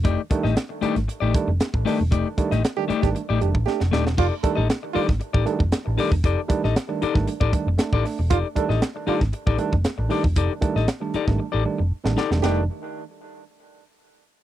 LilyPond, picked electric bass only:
\new Staff \with { instrumentName = "Picked electric bass" } { \clef bass \time 4/4 \key f \mixolydian \tempo 4 = 116 f,,16 r8 a,,16 r8. aes,,16 r16 a,,16 r16 f,,16 r16 a,,16 r16 e,,16 | f,,16 r8 a,,16 r8. aes,,16 r16 a,,16 f,,16 a,,16 r16 f,,16 ees,,16 e,,16 | f,,16 r8 a,,16 r8. aes,,16 r16 a,,16 r16 f,,16 r16 a,,16 r16 e,,16 | f,,16 r8 a,,16 r8. aes,,16 r16 a,,16 r16 f,,16 r16 a,,16 r16 e,,16 |
f,,16 r8 a,,16 r8. aes,,16 r16 a,,16 r16 f,,16 r16 a,,16 r16 e,,16 | f,,16 r8 a,,16 r8. aes,,16 r16 a,,16 r16 f,,16 r16 a,,16 r16 e,,16 | f,,8 r2. r8 | }